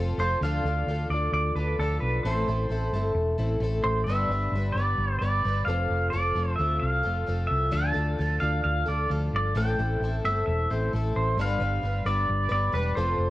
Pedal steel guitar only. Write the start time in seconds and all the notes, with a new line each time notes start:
0.20 C5
0.43 F5
1.10 D5
1.34 D5
1.56 B4
1.80 A4
2.00 B4
2.23 C5
3.84 C5
4.04 E5
4.72 D5
5.19 D5
5.65 F5
6.10 D5
6.56 E5
6.79 F5
7.47 E5
7.73 A5
8.40 F5
8.64 F5
8.88 D5
9.36 D5
9.57 G5
10.25 E5
10.46 E5
10.71 C5
11.16 C5
11.41 F5
12.07 D5
12.52 D5
12.74 B4
12.95 C5